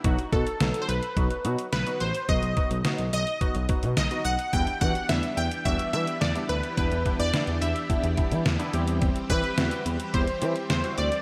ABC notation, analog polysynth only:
X:1
M:4/4
L:1/16
Q:1/4=107
K:Em
V:1 name="Analog polysynth"
z2 A3- A/2 c/2 B6 B2 c2 | ^d6 d4 z2 d2 f2 | g2 f2 e2 g2 e2 e2 d2 B2 | B3 d3 e6 z4 |
z2 B6 c4 c2 d2 |]